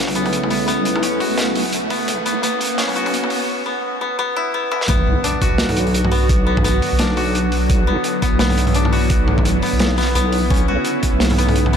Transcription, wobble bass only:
0.00 1.20 B1 medium
1.30 2.07 B1 medium
2.08 2.35 B1 loud
2.71 3.48 B1 medium
4.89 5.15 B1 medium
5.52 6.81 B1 medium
6.92 7.69 B1 medium
7.70 7.96 B1 loud
8.33 9.62 B1 medium
9.73 10.15 B1 medium
10.15 10.50 B1 loud
10.50 10.77 B1 loud
11.13 11.77 B1 medium

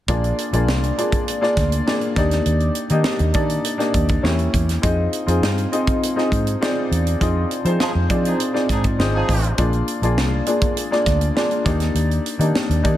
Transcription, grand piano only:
0.08 0.37 A#3 medium
0.08 0.37 D4 medium
0.08 0.37 F4 medium
0.08 0.37 G#4 medium
0.08 0.37 D5 medium
0.53 0.81 A#3 medium
0.53 0.82 D4 medium
0.53 0.82 F4 medium
0.53 0.82 G#4 medium
0.53 0.82 D5 medium
0.97 1.26 A#3 medium
0.97 1.26 D4 medium
0.97 1.26 F4 medium
0.97 1.27 G#4 medium
0.97 1.27 D5 medium
1.41 1.70 A#3 medium
1.41 1.70 D4 medium
1.41 1.71 F4 medium
1.41 1.70 G#4 medium
1.41 1.71 D5 medium
1.86 2.15 A#3 medium
1.86 2.15 D4 medium
1.86 2.16 F4 medium
1.86 2.17 G#4 medium
1.86 2.16 D5 medium
2.17 2.76 A#3 medium
2.17 2.76 D4 medium
2.17 2.76 D#4 medium
2.17 2.76 G4 medium
2.17 2.76 D5 loud
2.90 3.19 A#3 medium
2.90 3.19 D4 medium
2.90 3.19 D#4 medium
2.90 3.19 G4 medium
2.90 3.20 D#5 medium
3.34 3.63 A#3 medium
3.34 3.63 D4 medium
3.34 3.63 D#4 medium
3.34 3.63 G4 medium
3.34 3.63 D5 medium
3.78 4.07 A#3 medium
3.78 4.07 D4 medium
3.78 4.08 D#4 medium
3.78 4.08 G4 medium
3.78 4.08 D5 medium
4.22 4.61 A#3 medium
4.22 4.62 C#4 medium
4.22 4.62 E4 medium
4.22 4.62 G4 medium
4.22 4.62 C#5 medium
4.82 5.11 C4 medium
4.82 5.11 D#4 medium
4.82 5.11 F4 medium
4.82 5.12 G#4 medium
4.82 5.12 D#5 medium
5.26 5.56 C4 medium
5.26 5.56 D#4 medium
5.26 5.56 F4 medium
5.26 5.56 G#4 medium
5.26 5.57 D#5 medium
5.72 6.01 C4 medium
5.72 6.01 D#4 medium
5.72 6.01 F4 medium
5.72 6.01 G#4 medium
5.72 6.01 D#5 medium
6.16 6.45 C4 medium
6.16 6.45 D#4 medium
6.16 6.45 F4 medium
6.16 6.45 G#4 medium
6.16 6.46 D#5 medium
6.61 7.00 C4 medium
6.61 7.00 D#4 medium
6.61 7.00 F4 medium
6.61 7.00 G#4 medium
6.61 7.00 D5 medium
7.20 7.49 C4 medium
7.20 7.49 D#4 medium
7.20 7.50 F4 medium
7.20 7.50 G#4 medium
7.20 7.50 D#5 medium
7.65 7.94 C4 medium
7.65 7.94 D#4 medium
7.65 7.94 F4 medium
7.65 7.94 G#4 medium
7.65 7.94 C5 medium
8.09 8.38 C4 medium
8.09 8.38 D#4 medium
8.09 8.39 F4 medium
8.09 8.39 G#4 medium
8.09 8.39 D5 medium
8.53 8.83 C4 medium
8.53 8.83 D#4 medium
8.53 8.83 F4 medium
8.53 8.83 G#4 medium
8.53 8.83 D5 medium
8.99 9.37 C4 medium
8.99 9.37 D#4 medium
8.99 9.37 F4 medium
8.99 9.38 G#4 medium
8.99 9.38 D#5 medium
9.58 9.87 A#3 medium
9.58 9.87 D4 medium
9.58 9.87 F4 medium
9.58 9.87 G#4 medium
9.58 9.87 D5 medium
10.02 10.31 A#3 medium
10.02 10.31 D4 medium
10.02 10.32 F4 medium
10.02 10.32 G#4 medium
10.02 10.32 D5 medium
10.46 10.76 A#3 medium
10.46 10.76 D4 medium
10.46 10.76 F4 medium
10.46 10.76 G#4 medium
10.46 10.76 D5 medium
10.91 11.20 A#3 medium
10.91 11.21 D4 medium
10.91 11.21 F4 medium
10.91 11.21 G#4 medium
10.91 11.21 D5 medium
11.35 11.63 A#3 medium
11.35 11.64 D4 medium
11.35 11.66 F4 medium
11.35 11.66 G#4 medium
11.35 11.64 D5 medium
11.64 12.25 A#3 medium
11.64 12.25 D4 medium
11.64 12.25 D#4 medium
11.64 12.25 G4 medium
11.64 12.25 D5 medium
12.39 12.68 A#3 medium
12.39 12.69 D4 medium
12.39 12.69 D#4 medium
12.39 12.69 G4 medium
12.39 12.69 D5 medium
12.83 12.97 A#3 medium
12.83 12.97 D4 medium
12.83 12.97 D#4 medium
12.83 12.97 G4 medium
12.83 12.97 D5 medium

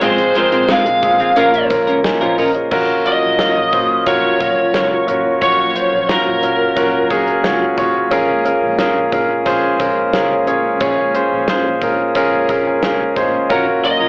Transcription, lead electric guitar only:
0.04 0.36 C5 medium
0.38 0.68 C5 medium
0.72 1.68 F5 medium
3.07 4.03 D#5 loud
4.07 5.41 C#5 medium
5.42 6.11 C#5 medium
6.09 7.40 A#4 medium
13.85 14.09 D#5 medium

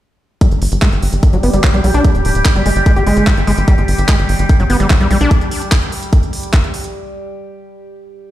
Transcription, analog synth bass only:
0.52 0.59 G1 medium
0.62 0.69 G1 loud
0.72 0.79 G1 loud
0.92 0.99 G1 medium
1.02 1.10 G1 loud
1.13 1.20 G1 medium
1.33 1.40 G1 medium
1.43 1.50 G1 loud
1.53 1.61 G1 medium
1.74 1.81 B1 medium
1.84 1.91 B1 loud
1.94 2.01 B1 medium
2.15 2.22 D1 medium
2.25 2.32 D1 loud
2.35 2.42 D1 loud
2.56 2.63 G1 medium
2.66 2.73 G1 medium
2.76 2.83 G1 medium
2.96 3.03 G1 medium
3.07 3.14 G1 loud
3.17 3.24 G1 medium
3.37 3.44 G1 medium
3.47 3.54 G1 loud
3.58 3.65 G1 medium
3.78 3.85 G1 medium
3.88 3.95 G1 loud
3.98 4.06 G1 loud
4.19 4.26 G1 medium
4.29 4.36 G1 medium
4.39 4.46 G1 medium
4.60 4.67 G1 medium
4.70 4.77 G1 loud
4.80 4.87 G1 medium
5.00 5.08 B1 medium
5.11 5.18 B1 loud
5.21 5.28 B1 loud

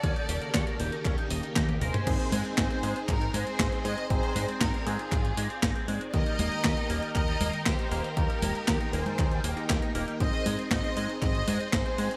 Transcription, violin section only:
0.00 1.52 A4 medium
0.00 1.52 D5 loud
1.81 2.54 G#4 medium
1.81 2.54 C5 loud
2.58 3.05 G#4 medium
2.58 3.05 C5 loud
3.09 3.34 D#4 medium
3.09 3.34 A#4 loud
3.34 3.85 G#4 medium
3.34 3.84 C5 loud
3.85 4.09 C5 medium
3.85 4.10 D#5 loud
4.10 4.58 G#4 medium
4.10 4.57 C5 loud
4.61 4.87 D#4 medium
4.61 4.87 A#4 loud
4.86 5.89 F4 medium
4.86 5.88 G#4 loud
6.14 7.12 A#4 loud
6.14 7.11 D#5 loud
7.15 7.63 A#4 medium
7.15 7.62 D#5 loud
7.66 8.16 G4 medium
7.66 8.17 C5 loud
8.17 8.94 G4 medium
8.17 8.93 A#4 loud
8.93 9.70 G#4 medium
8.93 9.70 C5 loud
10.20 10.68 C5 loud
10.20 10.68 D#5 loud
10.71 11.19 C5 medium
10.71 11.19 D#5 loud
11.22 11.70 C5 medium
11.22 11.70 D#5 loud
11.73 12.17 G#4 medium
11.73 12.17 C5 loud

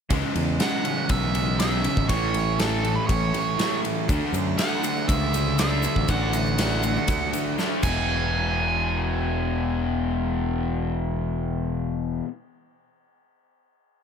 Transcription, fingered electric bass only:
0.10 0.21 C#2 medium
0.36 0.57 E2 medium
1.10 1.87 B1 loud
1.97 2.08 G#1 medium
2.09 2.97 A1 medium
3.09 3.31 A1 loud
4.09 4.20 D2 medium
4.33 4.55 F#2 medium
5.09 5.86 C#2 loud
5.96 6.07 A1 medium
6.09 6.97 A1 medium
7.08 7.30 D2 loud
7.83 12.21 E1 medium

